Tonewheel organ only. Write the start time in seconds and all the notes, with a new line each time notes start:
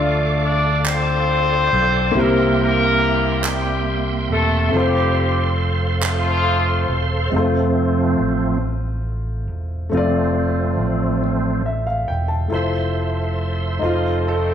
Already playing: A4 D5 F5 D6
2.14 A#3 E5 G5 C6
4.73 A4 C5 F5
7.31 F3 A3 C4
9.92 F3 A3 C4
11.24 F3 A3 C4
12.54 A4 C5 E5 C6
13.82 D#5